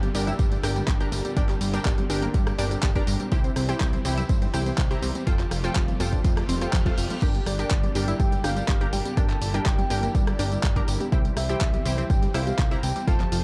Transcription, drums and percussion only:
0.03 closed hi-hat, tambourine, high conga, low conga
0.15 open hi-hat, tambourine
0.27 closed hi-hat, tambourine, low conga
0.39 kick, closed hi-hat, tambourine
0.52 closed hi-hat, tambourine, high bongo, low conga
0.63 cross-stick, open hi-hat, tambourine, high conga
0.76 closed hi-hat, tambourine, high bongo
0.88 kick, clap, closed hi-hat, tambourine
1.00 closed hi-hat, tambourine
1.12 open hi-hat, tambourine, high bongo
1.25 closed hi-hat, tambourine, high conga
1.37 kick, closed hi-hat, tambourine
1.49 clap, closed hi-hat, tambourine
1.61 open hi-hat, tambourine
1.74 closed hi-hat, tambourine
1.85 kick, clap, closed hi-hat, tambourine
1.98 closed hi-hat, tambourine, high conga, low conga
2.10 open hi-hat, tambourine
2.22 closed hi-hat, tambourine, high bongo, low conga
2.34 kick, closed hi-hat, tambourine
2.47 cross-stick, closed hi-hat, tambourine
2.58 open hi-hat, tambourine, high conga
2.71 closed hi-hat, tambourine
2.83 kick, clap, closed hi-hat, tambourine
2.95 kick, closed hi-hat, tambourine, high bongo
3.07 open hi-hat, tambourine
3.20 closed hi-hat, tambourine, high bongo, high conga
3.32 kick, closed hi-hat, tambourine
3.44 closed hi-hat, tambourine
3.56 cross-stick, open hi-hat, tambourine
3.69 closed hi-hat, tambourine
3.80 kick, cross-stick, clap, closed hi-hat, tambourine
3.93 closed hi-hat, tambourine, high conga, low conga
4.05 open hi-hat, tambourine
4.18 closed hi-hat, tambourine, low conga
4.29 kick, closed hi-hat, tambourine
4.41 closed hi-hat, tambourine, high bongo, low conga
4.54 cross-stick, open hi-hat, tambourine, high conga
4.66 closed hi-hat, tambourine, high bongo
4.78 kick, clap, closed hi-hat, tambourine
4.91 closed hi-hat, tambourine
5.02 open hi-hat, tambourine, high bongo
5.15 closed hi-hat, tambourine, high conga
5.27 kick, closed hi-hat, tambourine
5.39 clap, closed hi-hat, tambourine
5.51 cross-stick, open hi-hat, tambourine
5.64 closed hi-hat, tambourine
5.75 kick, cross-stick, clap, closed hi-hat, tambourine
5.88 closed hi-hat, tambourine, high conga, low conga
6.00 open hi-hat, tambourine
6.12 kick, closed hi-hat, tambourine, high bongo, low conga
6.24 kick, closed hi-hat, tambourine
6.37 cross-stick, closed hi-hat, tambourine
6.48 open hi-hat, tambourine, high conga
6.61 closed hi-hat, tambourine
6.73 kick, clap, closed hi-hat, tambourine
6.86 kick, closed hi-hat, tambourine, high bongo
6.98 open hi-hat, tambourine
7.10 closed hi-hat, tambourine, high bongo, high conga
7.22 kick, closed hi-hat, crash, tambourine
7.35 closed hi-hat, tambourine
7.46 cross-stick, open hi-hat, tambourine
7.59 closed hi-hat, tambourine
7.71 kick, cross-stick, clap, closed hi-hat, tambourine
7.83 closed hi-hat, tambourine, high conga, low conga
7.95 open hi-hat, tambourine
8.08 closed hi-hat, tambourine, low conga
8.20 kick, closed hi-hat, tambourine
8.32 closed hi-hat, tambourine, high bongo, low conga
8.44 cross-stick, open hi-hat, tambourine, high conga
8.56 closed hi-hat, tambourine, high bongo
8.68 kick, clap, closed hi-hat, tambourine
8.81 closed hi-hat, tambourine
8.93 open hi-hat, tambourine, high bongo
9.05 closed hi-hat, tambourine, high conga
9.17 kick, closed hi-hat, tambourine
9.30 clap, closed hi-hat, tambourine
9.42 open hi-hat, tambourine
9.54 closed hi-hat, tambourine
9.66 kick, clap, closed hi-hat, tambourine
9.79 closed hi-hat, tambourine, high conga, low conga
9.90 open hi-hat, tambourine
10.03 closed hi-hat, tambourine, high bongo, low conga
10.15 kick, closed hi-hat, tambourine
10.27 cross-stick, closed hi-hat, tambourine
10.39 open hi-hat, tambourine, high conga
10.52 closed hi-hat, tambourine
10.63 kick, clap, closed hi-hat, tambourine
10.76 kick, closed hi-hat, tambourine, high bongo
10.88 open hi-hat, tambourine
11.00 closed hi-hat, tambourine, high bongo, high conga
11.12 kick, closed hi-hat, tambourine
11.25 closed hi-hat, tambourine
11.37 cross-stick, open hi-hat, tambourine
11.49 closed hi-hat, tambourine
11.61 kick, cross-stick, clap, closed hi-hat, tambourine
11.73 closed hi-hat, tambourine, high conga, low conga
11.86 open hi-hat, tambourine
11.98 closed hi-hat, tambourine, low conga
12.10 kick, closed hi-hat, tambourine
12.22 closed hi-hat, tambourine, high bongo, low conga
12.34 cross-stick, open hi-hat, tambourine, high conga
12.47 closed hi-hat, tambourine, high bongo
12.59 kick, clap, closed hi-hat, tambourine
12.71 closed hi-hat, tambourine
12.83 open hi-hat, tambourine, high bongo
12.96 closed hi-hat, tambourine, high conga
13.07 kick, closed hi-hat, tambourine
13.20 clap, closed hi-hat, tambourine
13.32 open hi-hat, tambourine

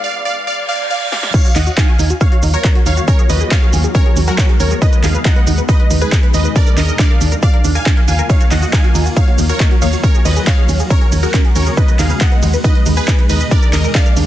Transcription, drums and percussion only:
1.12 snare
1.23 snare
1.34 kick, closed hi-hat, crash, shaker
1.45 closed hi-hat, shaker
1.56 clap, open hi-hat, shaker
1.67 closed hi-hat, shaker
1.77 kick, clap, closed hi-hat, shaker
1.88 closed hi-hat
1.99 open hi-hat, shaker
2.10 closed hi-hat, shaker
2.21 kick, closed hi-hat, shaker
2.32 closed hi-hat
2.43 open hi-hat, shaker
2.54 closed hi-hat, shaker
2.64 kick, clap, closed hi-hat, shaker
2.75 closed hi-hat
2.86 open hi-hat, shaker
2.97 closed hi-hat, shaker
3.08 kick, closed hi-hat, shaker
3.19 closed hi-hat, shaker
3.30 open hi-hat, shaker
3.41 closed hi-hat, shaker
3.51 kick, clap, closed hi-hat, shaker
3.62 closed hi-hat
3.73 open hi-hat, shaker
3.84 closed hi-hat, shaker
3.95 kick, closed hi-hat, shaker
4.06 closed hi-hat
4.17 open hi-hat, shaker
4.27 closed hi-hat, shaker
4.38 kick, clap, closed hi-hat, shaker
4.49 closed hi-hat
4.60 open hi-hat, shaker
4.71 closed hi-hat, shaker
4.82 kick, closed hi-hat, shaker
4.93 closed hi-hat, shaker
5.04 clap, open hi-hat, shaker
5.15 closed hi-hat, shaker
5.25 kick, clap, closed hi-hat, shaker
5.36 closed hi-hat
5.47 open hi-hat, shaker
5.58 closed hi-hat, shaker
5.69 kick, closed hi-hat, shaker
5.80 closed hi-hat
5.91 open hi-hat, shaker
6.01 closed hi-hat, shaker
6.12 kick, clap, closed hi-hat, shaker
6.23 closed hi-hat
6.34 open hi-hat, shaker
6.45 closed hi-hat, shaker
6.56 kick, closed hi-hat, shaker
6.67 closed hi-hat, shaker
6.78 clap, open hi-hat, shaker
6.88 closed hi-hat, shaker
6.99 kick, clap, closed hi-hat, shaker
7.10 closed hi-hat
7.21 open hi-hat, shaker
7.32 closed hi-hat, shaker
7.43 kick, closed hi-hat, shaker
7.54 closed hi-hat
7.64 open hi-hat, shaker
7.75 closed hi-hat, shaker
7.86 kick, clap, closed hi-hat, shaker
7.97 closed hi-hat
8.08 open hi-hat, shaker
8.19 closed hi-hat, shaker
8.30 kick, closed hi-hat, ride, shaker
8.41 closed hi-hat, shaker
8.51 clap, open hi-hat, ride, shaker
8.62 closed hi-hat, shaker
8.73 kick, clap, closed hi-hat, ride, shaker
8.84 closed hi-hat
8.95 open hi-hat, ride, shaker
9.06 closed hi-hat, shaker
9.17 kick, closed hi-hat, ride, shaker
9.28 closed hi-hat
9.38 open hi-hat, ride, shaker
9.49 closed hi-hat, shaker
9.60 kick, clap, closed hi-hat, ride, shaker
9.71 closed hi-hat
9.82 open hi-hat, ride, shaker
9.93 closed hi-hat, shaker
10.04 kick, closed hi-hat, ride, shaker
10.15 closed hi-hat, shaker
10.25 open hi-hat, ride, shaker
10.36 closed hi-hat, shaker
10.47 kick, clap, closed hi-hat, ride, shaker
10.58 closed hi-hat
10.69 open hi-hat, ride, shaker
10.80 closed hi-hat, shaker
10.90 kick, closed hi-hat, ride, shaker
11.01 closed hi-hat
11.12 open hi-hat, ride, shaker
11.23 closed hi-hat, shaker
11.34 kick, clap, closed hi-hat, ride, shaker
11.45 closed hi-hat
11.56 open hi-hat, ride, shaker
11.66 closed hi-hat, shaker
11.77 kick, closed hi-hat, ride, shaker
11.88 closed hi-hat, shaker
11.99 clap, open hi-hat, ride, shaker
12.10 closed hi-hat, shaker
12.21 kick, clap, closed hi-hat, ride, shaker
12.32 closed hi-hat
12.43 open hi-hat, ride, shaker
12.53 closed hi-hat, shaker
12.64 kick, closed hi-hat, ride, shaker
12.75 closed hi-hat
12.86 open hi-hat, ride, shaker
12.97 closed hi-hat, shaker
13.08 kick, clap, closed hi-hat, ride, shaker
13.19 closed hi-hat
13.30 open hi-hat, ride, shaker
13.41 closed hi-hat, shaker
13.51 kick, closed hi-hat, ride, shaker
13.62 closed hi-hat, shaker
13.73 clap, open hi-hat, ride, shaker
13.84 closed hi-hat, shaker
13.95 kick, clap, closed hi-hat, ride, shaker
14.06 closed hi-hat, shaker
14.17 open hi-hat, ride, shaker

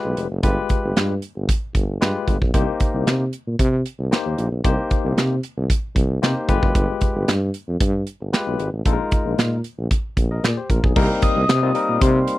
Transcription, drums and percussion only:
0.17 closed hi-hat
0.43 kick, closed hi-hat
0.69 kick, closed hi-hat
0.97 snare, clap, closed hi-hat
1.22 closed hi-hat
1.49 kick, closed hi-hat
1.75 kick, closed hi-hat
2.02 snare, clap, closed hi-hat
2.28 kick, closed hi-hat
2.42 kick
2.54 kick, closed hi-hat
2.80 kick, closed hi-hat
3.07 snare, clap, closed hi-hat
3.33 closed hi-hat
3.59 kick, closed hi-hat
3.86 closed hi-hat
4.12 snare, clap, closed hi-hat
4.38 closed hi-hat
4.64 kick, closed hi-hat
4.91 kick, closed hi-hat
5.18 snare, clap, closed hi-hat
5.43 closed hi-hat
5.70 kick, closed hi-hat
5.96 kick, closed hi-hat
6.23 snare, clap, closed hi-hat
6.49 kick, closed hi-hat
6.63 kick
6.75 kick, closed hi-hat
7.01 kick, closed hi-hat
7.28 snare, clap, closed hi-hat
7.54 closed hi-hat
7.80 kick, closed hi-hat
8.07 closed hi-hat
8.33 snare, clap, closed hi-hat
8.59 closed hi-hat
8.85 kick, closed hi-hat
9.11 kick, closed hi-hat
9.39 snare, clap, closed hi-hat
9.64 closed hi-hat
9.91 kick, closed hi-hat
10.17 kick, closed hi-hat
10.44 snare, clap, closed hi-hat
10.70 kick, closed hi-hat
10.84 kick
10.96 kick, crash
11.22 kick, closed hi-hat
11.49 snare, clap, closed hi-hat
11.75 closed hi-hat
12.01 kick, closed hi-hat
12.28 closed hi-hat

